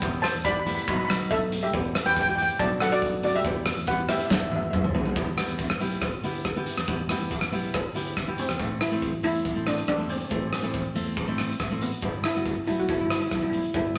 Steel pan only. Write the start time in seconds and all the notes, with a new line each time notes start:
Already playing: B4 G5
0.22 C5 A5
0.45 D5 B5
0.52 B5
0.60 B5
0.66 B5
0.75 B5
0.82 B5
0.89 B5
0.97 B5
1.05 B5
1.12 B5
1.31 A4 E5
1.63 G4 E5
2.06 B4 G5
2.13 G5
2.21 G5
2.28 G5
2.35 G5
2.42 G5
2.60 D5 A5
2.81 A4 F#5
2.92 F#4 D5
3.24 F#4 D5
3.35 G4 E5
3.88 B4 F#5
4.09 G4 E5
4.17 E5
4.25 E5
4.33 E5
4.41 E5
4.48 E5
4.56 E5
4.63 E5
4.71 E5
4.79 E5
8.39 C4
8.81 E4
9.24 E4
9.67 D4
9.88 D4
10.10 C4
10.17 C4
10.25 C4
10.33 C4
10.40 C4
10.47 C4
10.55 C4
10.62 C4
10.69 C4
10.77 C4
11.82 B3
12.25 E4
12.68 E4
12.80 F#4
12.90 E4
12.97 E4
13.05 E4
13.12 E4
13.20 E4
13.27 E4
13.35 E4
13.42 E4
13.50 E4
13.58 E4
13.76 E4